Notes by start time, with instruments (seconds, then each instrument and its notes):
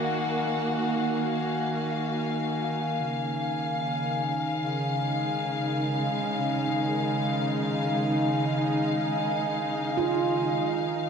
Already playing: string section D#3 A#3 F#4 F5, synth drone D#3, glass harmonica G#5
3.06 string section C#3
4.53 string section G#3
4.97 string section D#4
9.98 handpan F4
10.67 string section D#3, synth drone D#3